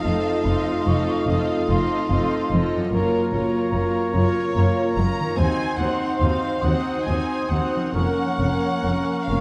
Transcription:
Already playing: F2 A3 D#4 D#5 F5
0.04 F1 F2 C4 F4 A4 D#5 A5
0.45 F1 F2 C4 F4 A4 D#5 C6
0.85 F1 F2 C4 F4 A4 D#5 C#6
1.27 F1 F2 C4 F4 A4 D#5 D#6
1.68 F1 F2 C4 F4 A4 D#5 C6
2.09 F1 F2 C4 F4 A4 D#5
2.51 F1 F2 C4 F4 A4 D#5
2.75 F#2
2.80 C#4
2.84 F4
2.89 F#2 A#3 A#4
2.93 F#1 A#3 F4 A#4 C#5 A#5
3.32 F#1 F#2 A#3 F4 A#4 C#5
3.73 F#1 F#2 A#3 F4 A#4 C#5
4.14 F#1 F#2 A#3 F4 A#4 C#5
4.55 F#1 F#2 A#3 F4 A#4 C#5
4.96 F#1 F#2 A#3 F4 A#4 C#5 A#5
5.19 D#3
5.24 C4
5.28 D#4
5.33 C5
5.37 D#2 C4 D#4 F#4 C5 G#5 C6
5.78 D#2 C4 D#4 F#4 C5 F#5
6.20 D#2 C4 D#4 F#4 C5 F5
6.62 D#2 C4 D#4 F#4 C5 F#5 D#6
7.05 D#2 C4 D#4 F#4 C5 G#5
7.49 D#2 C4 D#4 F#4 C5 F#5
7.76 F3
7.81 C#4
7.85 A#4
7.93 F1 F2 A#3 C#4 A#4 C#5 F#5 C#6
8.38 F1 F2 A#3 C#4 A#4 C#5
8.83 F1 F2 A#3 C#4 A#4 C#5
9.27 F1 F2 A#3 C#4 A#4 C#5 F5

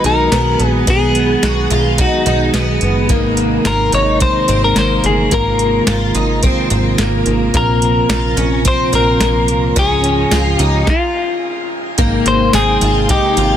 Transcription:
Already playing: D#3 F#3 G#3 B3 F#4
0.04 B1 D#4 A#4, closed hi-hat
0.32 B1 B3, snare, closed hi-hat
0.59 A#1, closed hi-hat
0.67 G#4
0.87 B1 B3 G#4, kick, closed hi-hat
1.15 closed hi-hat
1.43 B1 F#4, snare, closed hi-hat
1.70 B1 F4, closed hi-hat
1.98 D#4 F#4, kick, closed hi-hat
2.26 B1 D#4, closed hi-hat
2.54 B1 B3, snare, closed hi-hat
2.81 F#1, closed hi-hat
3.09 G#1 C3 A#3 D#4, kick, closed hi-hat
3.37 closed hi-hat
3.65 G#1 F4 A#4, snare, closed hi-hat
3.92 G#1 D#4 C#5, closed hi-hat
4.20 C4 C5, kick, closed hi-hat
4.48 G#1 C4, closed hi-hat
4.64 A#4
4.76 G#1 A#3 C5, snare, closed hi-hat
5.04 G1 G#4, closed hi-hat
5.31 G#1 A#3 F4 A#4, kick, closed hi-hat
5.59 closed hi-hat
5.87 G#1 F4, snare, closed hi-hat
6.15 G#1 D#4, closed hi-hat
6.43 C4, kick, closed hi-hat
6.70 G#1 C4, closed hi-hat
6.98 G#1 A#3, snare, closed hi-hat
7.26 G#1, closed hi-hat
7.54 A#1 A#2 F3 A#3 C4 A#4, kick, closed hi-hat
7.82 closed hi-hat
8.09 A#1 F4, snare, closed hi-hat
8.37 A#1 C#4, closed hi-hat
8.65 C4 C5, kick, closed hi-hat
8.93 A#1 C4 A#4, closed hi-hat
9.20 A#1 A#3, snare, closed hi-hat
9.48 C2, closed hi-hat
9.76 C#2 G#2 C#3 C#4 G#4, kick, closed hi-hat
10.04 closed hi-hat
10.31 C#2 F4, snare, closed hi-hat, tambourine
10.54 G4
10.59 C#2 D#4, closed hi-hat
10.87 F4, kick, snare
11.98 G#1 C3 G#3 A#3 D#4 G5, kick, closed hi-hat
12.26 G#1 C5, closed hi-hat
12.53 G#1 C4 G#4, snare, closed hi-hat, tambourine
12.81 G#1 F4, closed hi-hat
13.09 D#4 G4, kick, closed hi-hat
13.37 G#1 F4, closed hi-hat

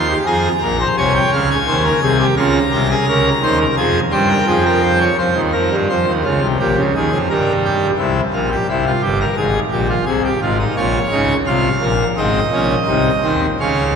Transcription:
Already playing: D#2 D#3 C6
0.09 G4
0.27 F2 F3 G#4 A#5
0.62 A#1 A#2 A#4
0.81 C5
0.98 C2 C3 C#5 G#5
1.16 G5
1.33 C#2 C#3 F5
1.51 G#5
1.67 D#2 D#3 C5
1.84 A#4
2.02 C2 C3 G#4
2.19 G4
2.37 C#2 C#3 F4 A#5
2.72 C2 C3 G4
2.91 G#4
3.08 C#2 C#3 A#4
3.43 D#2 D#3 C5
3.60 A#4
3.77 F2 F3 G#4 G#5
4.12 G2 G3 C5 G5
4.30 A#4
4.47 F2 F3 G#4
4.65 A#4
4.83 C5
5.00 C#5
5.18 F2 F3 C5
5.36 D#2 D#3
5.53 F2 F3 A#4
5.71 G2 G3
5.89 F2 F3 C5
6.07 D#2 D#3
6.24 C#2 C#3 F4
6.41 C2 C3
6.59 A#1 A#2 G4
6.77 C#2 C#3
6.95 D#2 D#3 G#4
7.12 F2 F3
7.30 G2 G3 A#4
7.65 G4
7.99 C2 C3 E4
8.33 A#1 A#2 F4
8.52 G4
8.69 C2 C3 E4
8.87 F4
9.03 G1 G2 G4
9.21 A#4
9.37 G#1 G#2 G#4
9.72 A#1 A#2 G4
9.89 F4
10.06 C2 C3 G#4
10.25 G4
10.42 G#1 G#2 F4
10.59 D#4
10.77 A#1 A#2 F4 C#5
11.12 C#2 C#3 D#4
11.46 C2 C3 F4 F5
11.82 A#1 A#2 A#3
12.17 G#1 G#2 C4 D#5
12.53 A#1 A#2 C#4
12.87 C2 C3 D#4
13.23 D#2 D#3 C4
13.60 C#2 C#3 C#4 F5

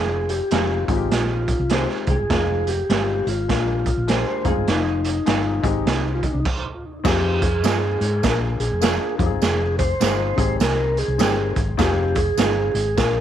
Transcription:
Already playing: F1 G#3 C4 D#4 F4 G#4
0.29 G4, closed hi-hat
0.51 F1 G#3 C4 D#4 F4 G#4, snare, closed hi-hat
0.88 G#1 G#3 C4 D#4 F4, kick, closed hi-hat
0.96 G4
1.11 A#1, snare, closed hi-hat
1.48 kick, closed hi-hat
1.60 C2
1.69 D#3 G#3 C4 D#4 G4 C5, snare, closed hi-hat
1.89 snare
2.07 C2 D#3 G#3 C4 G4 G#4, kick, closed hi-hat
2.19 G1
2.30 F1 G#3 C4 D#4 F4, kick, snare, closed hi-hat
2.67 G4, closed hi-hat
2.89 G1 G#3 C4 D#4 F4 G#4, snare, closed hi-hat
3.26 G#1 F4, closed hi-hat
3.48 A#1 G#3 A#3 D4 F4, kick, snare, closed hi-hat
3.86 kick, closed hi-hat
3.97 A#1
4.07 F3 G#3 A#3 D4 G4 G#4 C5, snare, closed hi-hat
4.43 F1 G3 G#3 C4 D#4 F4 G#4, kick, closed hi-hat
4.48 G#3 G#4
4.57 G1
4.67 F1 D#4, snare, closed hi-hat
5.04 closed hi-hat
5.26 G1 G#3 C4 D#4 F4 G#4, snare, closed hi-hat
5.63 G#1 G#3 C4 D#4 G4, kick, closed hi-hat
5.86 C2, snare, closed hi-hat
6.15 F4
6.23 D#4, kick, closed hi-hat
6.33 C2 D4
6.40 D#4
6.45 kick, crash
7.04 F2 C4 D#4 F4 G4 G#4, kick, snare, crash, tambourine
7.42 G#4, kick, closed hi-hat
7.63 G2 F3 C4 D#4 F4 G#4, snare, closed hi-hat, tambourine
8.01 G#2, closed hi-hat
8.22 A#1 A#3 D4 F4 G#4 A#4, kick, snare, closed hi-hat, tambourine
8.60 A#1 G#4, closed hi-hat
8.71 F1
8.81 F3 A#3 D4 F4 G#4, snare, closed hi-hat, tambourine
9.18 F2 C4 D#4 F4 G4, kick, closed hi-hat
9.26 G#4
9.30 G1
9.42 F1 G#4, snare, closed hi-hat, tambourine
9.79 C5, kick, closed hi-hat
10.00 G1 G#3 C4 D#4 F4 G#4, snare, closed hi-hat, tambourine
10.36 G#1 C4 D#4 G4 G#4, kick, closed hi-hat
10.60 C2 A#4, snare, closed hi-hat, tambourine
10.97 G#4, closed hi-hat
11.08 C2
11.18 G1 G3 C4 D#4 G4 G#4, snare, closed hi-hat, tambourine
11.56 G#1, kick, closed hi-hat
11.77 F1 C4 D#4 F4 G4 G#4, kick, snare, closed hi-hat, tambourine
12.15 G#4, kick, closed hi-hat
12.37 G1 G#3 C4 D#4 F4 G#4, snare, closed hi-hat, tambourine
12.74 G#1, closed hi-hat
12.97 A#1 A#3 D4 F4 G#4 A#4, kick, snare, closed hi-hat, tambourine

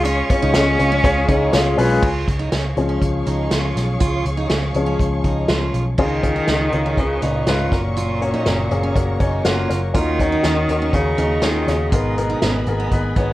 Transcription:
Already playing: C#2 C#3 G#3 C#4 F4 G#4 C#5 F5 C#6
0.05 C#4 F4, closed hi-hat
0.30 G#3 C#4 F4 G#4 C#5, kick, closed hi-hat
0.42 C#2 D#4
0.53 C#2 G#3 C#4 F4 G#4 D#5, snare, closed hi-hat
0.79 C#2 G#3 C#4 F4 G#4 D#5, closed hi-hat
0.92 C#4
1.04 C#2 G#3 C#4 F4 G#4 C#5, kick, closed hi-hat
1.28 C#2 G#3 C#4 D#4 F4 G#4 C#5, kick, closed hi-hat
1.52 C#2 G#3 C#4 F4 G#4 C#5 F5, snare, closed hi-hat
1.78 B1 G#3 C#4 F4 G#4 B4 G#5, open hi-hat
2.03 C#2 F4 G#4 C#5 F5 C#6, kick, crash
2.28 C#2, kick, closed hi-hat
2.39 D#4
2.52 C#2 C#4, snare, closed hi-hat
2.77 C#2 F3 G#3 C#4, closed hi-hat
2.89 C#4
3.02 C#2, kick, closed hi-hat
3.26 C#2 D#4, closed hi-hat
3.51 C#2 F4, snare, closed hi-hat
3.76 B1, snare, closed hi-hat
4.00 C#2 F4, kick, closed hi-hat
4.25 C#2, closed hi-hat
4.37 D#4
4.50 C#2 C#4, snare, closed hi-hat
4.74 C#2 F3 G#3 C#4, closed hi-hat
4.87 C#4
5.00 C#2, kick, closed hi-hat
5.24 C#2 D#4, kick, closed hi-hat
5.48 C#2 F4, snare, closed hi-hat
5.73 B1, closed hi-hat
5.98 C#2 C#3 D#3 C#4 D#4 F4 G#4 D#5 F5 C#6, kick, crash
6.23 C#4 D#4 F4 G#4, kick, closed hi-hat
6.36 D#4
6.47 C#2 C#4 D#4 F4 G#4, snare, closed hi-hat
6.72 C#2 C#4 D#4 F4 A#4, closed hi-hat
6.86 C#4
6.97 C#2 C#3 C#4 D#4 F4 B4, kick, closed hi-hat
7.22 C#2 A#2 C#4 D#4 F4 B4, closed hi-hat
7.47 C#2 G#2 C#4 D#4 F4 B4, snare, closed hi-hat
7.71 F#1 A#2 A#3 C#4 F#4 A#4 C#5 A#5, kick, snare, closed hi-hat
7.97 F4, closed hi-hat
8.22 A#3 C#4 F#4 C#5, closed hi-hat
8.34 D#4
8.46 F#1 A#3 C#4 F#4 A#4, snare, closed hi-hat
8.71 F#1 A#3 C#4 F#4 G#4, closed hi-hat
8.83 C#4
8.95 F#1 A#3 C#4 F#4 A#4, kick, closed hi-hat
9.20 F#1 A#3 C#4 D#4 F#4 C#5 G#5, kick, closed hi-hat
9.45 F#1 A#3 C#4 F4 F#4 A#4 F#5, snare, closed hi-hat
9.70 F#1 A#3 C#4 F#4 A#4, snare, closed hi-hat
9.94 D#2 D#3 C#4 D#4 F4 F#4 A#4 D#5 A#5 C#6, kick, closed hi-hat
10.19 C#4 D#4 F#4 C#5, kick, closed hi-hat
10.32 D#4
10.43 D#2 C#4 D#4 F#4 C#5, snare, closed hi-hat
10.69 D#2 C#4 D#4 F#4 A#4, closed hi-hat
10.82 C#4
10.93 D#2 C#3 C#4 D#4 F#4 C#5, kick, closed hi-hat
11.18 D#2 C#4 D#4 F#4 G#4, closed hi-hat
11.42 D#2 D#3 C#4 D#4 F4 F#4 G#4, snare, closed hi-hat
11.68 D#2 C#3 C#4 D#4 F#4 C#5, snare, closed hi-hat
11.92 G#1 G#2 B2 B3 D#4 F4 G#4 A#4 G#5 B5, kick, closed hi-hat
12.18 B3 D#4 G#4 A#4, closed hi-hat
12.30 D#4
12.42 G#1 B3 C#4 D#4 G#4 B4, snare, closed hi-hat
12.66 G#1 B3 D#4 G#4 A#4, closed hi-hat
12.80 B3
12.92 G#1 B3 D#4 G#4 B4, kick, closed hi-hat
13.16 G#1 B3 D#4 G#4 C#5, kick, closed hi-hat

